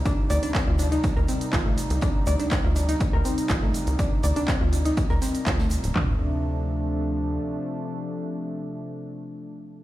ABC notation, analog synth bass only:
X:1
M:4/4
L:1/16
Q:1/4=122
K:Dphr
V:1 name="Analog synth bass" clef=bass
z2 D,, z2 D,,3 z D,, z2 A,,,3 C,, | z2 D,, z2 D,,3 z D,, z2 A,,,3 C,, | z2 D,, z2 D,,3 z D,, z2 D,,3 D,,, | D,,12 z4 |
z16 |]